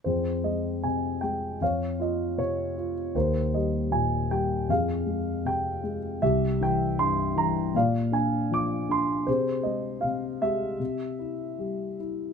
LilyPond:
<<
  \new Staff \with { instrumentName = "Grand piano" } { \time 4/4 \key f \minor \tempo 4 = 78 << { c''8 ees''8 aes''8 g''8 f''8 ees''8 des''8. r16 | c''8 ees''8 aes''8 g''8 f''4 g''8. r16 | e''8 g''8 c'''8 bes''8 f''8 aes''8 d'''8 c'''8 | c''8 ees''8 f''8 e''2 r8 | } \\ { aes'2 des''2 | bes'2 aes'2 | g'2 d''2 | gis'4. g'2 r8 | } >> }
  \new Staff \with { instrumentName = "Grand piano" } { \clef bass \time 4/4 \key f \minor f,8 aes8 c8 aes8 f,8 f'8 c8 f'8 | ees,8 g8 bes,8 g8 f,8 aes8 c8 aes8 | c,8 e8 g,8 e8 bes,8 d'8 f8 d'8 | c8 gis8 c8 gis8 c8 e'8 g8 e'8 | }
>>